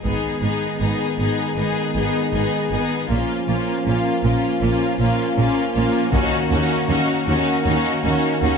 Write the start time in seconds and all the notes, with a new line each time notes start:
0.02 G#1 G#2 D#3 G#3 B3 D#4 G#4, taiko
0.42 G#1 G#2 B3 D#4 G#4
0.79 G#1 G#2 B3 D#4 G#4
1.18 G#1 G#2 B3 D#4 G#4
1.56 G#1 G#2 B3 D#4 G#4
1.94 G#1 G#2 B3 D#4 G#4
2.32 G#1 G#2 B3 D#4 G#4
2.71 G#1 G#2 B3 D#4 G#4
3.09 A#1 A#2 F3 A#3 C#4 F4
3.47 A#1 A#2 A#3 C#4 F4
3.85 A#1 A#2 A#3 C#4 F4
4.22 A#1 A#2 A#3 C#4 F4
4.60 A#1 A#2 A#3 C#4 F4
4.99 A#1 A#2 A#3 C#4 F4
5.36 A#1 A#2 A#3 C#4 F4
5.75 A#1 A#2 A#3 C#4 F4
6.12 D#2 D#3 C#4 D#4 F#4, taiko
6.50 D#2 C#4 D#4 F#4
6.88 D#2 C#4 D#4 F#4
7.26 D#2 C#4 D#4 F#4
7.64 D#2 C#4 D#4 F#4
8.03 D#2 C#4 D#4 F#4
8.42 D#2 C#4 D#4 F#4